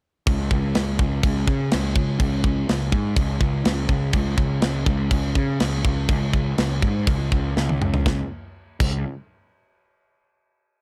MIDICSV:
0, 0, Header, 1, 3, 480
1, 0, Start_track
1, 0, Tempo, 483871
1, 273, Time_signature, 4, 2, 24, 8
1, 5074, Tempo, 492207
1, 10634, End_track
2, 0, Start_track
2, 0, Title_t, "Picked electric bass"
2, 0, Program_c, 0, 34
2, 268, Note_on_c, 0, 37, 91
2, 481, Note_off_c, 0, 37, 0
2, 507, Note_on_c, 0, 37, 86
2, 720, Note_off_c, 0, 37, 0
2, 752, Note_on_c, 0, 37, 90
2, 963, Note_off_c, 0, 37, 0
2, 983, Note_on_c, 0, 37, 97
2, 1198, Note_off_c, 0, 37, 0
2, 1223, Note_on_c, 0, 37, 89
2, 1437, Note_off_c, 0, 37, 0
2, 1462, Note_on_c, 0, 49, 85
2, 1676, Note_off_c, 0, 49, 0
2, 1721, Note_on_c, 0, 37, 86
2, 1927, Note_off_c, 0, 37, 0
2, 1943, Note_on_c, 0, 37, 85
2, 2156, Note_off_c, 0, 37, 0
2, 2179, Note_on_c, 0, 37, 105
2, 2605, Note_off_c, 0, 37, 0
2, 2668, Note_on_c, 0, 37, 89
2, 2879, Note_off_c, 0, 37, 0
2, 2895, Note_on_c, 0, 44, 95
2, 3112, Note_off_c, 0, 44, 0
2, 3138, Note_on_c, 0, 37, 86
2, 3354, Note_off_c, 0, 37, 0
2, 3378, Note_on_c, 0, 37, 88
2, 3594, Note_off_c, 0, 37, 0
2, 3622, Note_on_c, 0, 37, 90
2, 3836, Note_off_c, 0, 37, 0
2, 3858, Note_on_c, 0, 37, 86
2, 4074, Note_off_c, 0, 37, 0
2, 4106, Note_on_c, 0, 37, 100
2, 4320, Note_off_c, 0, 37, 0
2, 4341, Note_on_c, 0, 37, 89
2, 4557, Note_off_c, 0, 37, 0
2, 4587, Note_on_c, 0, 37, 89
2, 4802, Note_off_c, 0, 37, 0
2, 4823, Note_on_c, 0, 37, 97
2, 5041, Note_off_c, 0, 37, 0
2, 5069, Note_on_c, 0, 37, 92
2, 5281, Note_off_c, 0, 37, 0
2, 5312, Note_on_c, 0, 49, 90
2, 5523, Note_off_c, 0, 49, 0
2, 5548, Note_on_c, 0, 37, 86
2, 5760, Note_off_c, 0, 37, 0
2, 5789, Note_on_c, 0, 37, 88
2, 6000, Note_off_c, 0, 37, 0
2, 6027, Note_on_c, 0, 37, 98
2, 6449, Note_off_c, 0, 37, 0
2, 6502, Note_on_c, 0, 37, 88
2, 6716, Note_off_c, 0, 37, 0
2, 6741, Note_on_c, 0, 44, 92
2, 6955, Note_off_c, 0, 44, 0
2, 6982, Note_on_c, 0, 37, 88
2, 7196, Note_off_c, 0, 37, 0
2, 7223, Note_on_c, 0, 37, 89
2, 7436, Note_off_c, 0, 37, 0
2, 7463, Note_on_c, 0, 37, 95
2, 7676, Note_off_c, 0, 37, 0
2, 7703, Note_on_c, 0, 37, 83
2, 7916, Note_off_c, 0, 37, 0
2, 7942, Note_on_c, 0, 37, 101
2, 8079, Note_off_c, 0, 37, 0
2, 8670, Note_on_c, 0, 37, 104
2, 8893, Note_off_c, 0, 37, 0
2, 10634, End_track
3, 0, Start_track
3, 0, Title_t, "Drums"
3, 265, Note_on_c, 9, 49, 58
3, 267, Note_on_c, 9, 36, 96
3, 364, Note_off_c, 9, 49, 0
3, 366, Note_off_c, 9, 36, 0
3, 505, Note_on_c, 9, 36, 87
3, 604, Note_off_c, 9, 36, 0
3, 743, Note_on_c, 9, 49, 57
3, 748, Note_on_c, 9, 38, 103
3, 842, Note_off_c, 9, 49, 0
3, 847, Note_off_c, 9, 38, 0
3, 983, Note_on_c, 9, 36, 98
3, 1083, Note_off_c, 9, 36, 0
3, 1222, Note_on_c, 9, 49, 62
3, 1224, Note_on_c, 9, 36, 114
3, 1321, Note_off_c, 9, 49, 0
3, 1323, Note_off_c, 9, 36, 0
3, 1463, Note_on_c, 9, 36, 92
3, 1563, Note_off_c, 9, 36, 0
3, 1701, Note_on_c, 9, 49, 65
3, 1706, Note_on_c, 9, 38, 125
3, 1800, Note_off_c, 9, 49, 0
3, 1805, Note_off_c, 9, 38, 0
3, 1940, Note_on_c, 9, 36, 92
3, 2040, Note_off_c, 9, 36, 0
3, 2181, Note_on_c, 9, 36, 103
3, 2182, Note_on_c, 9, 49, 57
3, 2280, Note_off_c, 9, 36, 0
3, 2282, Note_off_c, 9, 49, 0
3, 2420, Note_on_c, 9, 36, 91
3, 2519, Note_off_c, 9, 36, 0
3, 2669, Note_on_c, 9, 49, 55
3, 2674, Note_on_c, 9, 38, 108
3, 2768, Note_off_c, 9, 49, 0
3, 2773, Note_off_c, 9, 38, 0
3, 2900, Note_on_c, 9, 36, 93
3, 2999, Note_off_c, 9, 36, 0
3, 3139, Note_on_c, 9, 36, 108
3, 3145, Note_on_c, 9, 49, 56
3, 3239, Note_off_c, 9, 36, 0
3, 3244, Note_off_c, 9, 49, 0
3, 3379, Note_on_c, 9, 36, 85
3, 3478, Note_off_c, 9, 36, 0
3, 3623, Note_on_c, 9, 49, 67
3, 3628, Note_on_c, 9, 38, 120
3, 3722, Note_off_c, 9, 49, 0
3, 3727, Note_off_c, 9, 38, 0
3, 3858, Note_on_c, 9, 36, 84
3, 3957, Note_off_c, 9, 36, 0
3, 4096, Note_on_c, 9, 49, 57
3, 4101, Note_on_c, 9, 36, 99
3, 4195, Note_off_c, 9, 49, 0
3, 4200, Note_off_c, 9, 36, 0
3, 4342, Note_on_c, 9, 36, 89
3, 4441, Note_off_c, 9, 36, 0
3, 4582, Note_on_c, 9, 49, 55
3, 4587, Note_on_c, 9, 38, 106
3, 4681, Note_off_c, 9, 49, 0
3, 4686, Note_off_c, 9, 38, 0
3, 4825, Note_on_c, 9, 36, 91
3, 4924, Note_off_c, 9, 36, 0
3, 5066, Note_on_c, 9, 49, 58
3, 5069, Note_on_c, 9, 36, 106
3, 5163, Note_off_c, 9, 49, 0
3, 5166, Note_off_c, 9, 36, 0
3, 5307, Note_on_c, 9, 36, 82
3, 5405, Note_off_c, 9, 36, 0
3, 5548, Note_on_c, 9, 49, 68
3, 5553, Note_on_c, 9, 38, 117
3, 5646, Note_off_c, 9, 49, 0
3, 5650, Note_off_c, 9, 38, 0
3, 5787, Note_on_c, 9, 36, 87
3, 5885, Note_off_c, 9, 36, 0
3, 6021, Note_on_c, 9, 49, 56
3, 6023, Note_on_c, 9, 36, 102
3, 6119, Note_off_c, 9, 49, 0
3, 6121, Note_off_c, 9, 36, 0
3, 6264, Note_on_c, 9, 36, 88
3, 6361, Note_off_c, 9, 36, 0
3, 6503, Note_on_c, 9, 49, 59
3, 6508, Note_on_c, 9, 38, 97
3, 6601, Note_off_c, 9, 49, 0
3, 6605, Note_off_c, 9, 38, 0
3, 6741, Note_on_c, 9, 36, 88
3, 6839, Note_off_c, 9, 36, 0
3, 6982, Note_on_c, 9, 36, 114
3, 6983, Note_on_c, 9, 49, 55
3, 7080, Note_off_c, 9, 36, 0
3, 7080, Note_off_c, 9, 49, 0
3, 7223, Note_on_c, 9, 36, 89
3, 7321, Note_off_c, 9, 36, 0
3, 7469, Note_on_c, 9, 38, 66
3, 7566, Note_off_c, 9, 38, 0
3, 7589, Note_on_c, 9, 48, 69
3, 7686, Note_off_c, 9, 48, 0
3, 7708, Note_on_c, 9, 45, 90
3, 7805, Note_off_c, 9, 45, 0
3, 7826, Note_on_c, 9, 43, 89
3, 7923, Note_off_c, 9, 43, 0
3, 7945, Note_on_c, 9, 36, 94
3, 7952, Note_on_c, 9, 38, 85
3, 8043, Note_off_c, 9, 36, 0
3, 8050, Note_off_c, 9, 38, 0
3, 8669, Note_on_c, 9, 36, 114
3, 8671, Note_on_c, 9, 57, 92
3, 8767, Note_off_c, 9, 36, 0
3, 8769, Note_off_c, 9, 57, 0
3, 10634, End_track
0, 0, End_of_file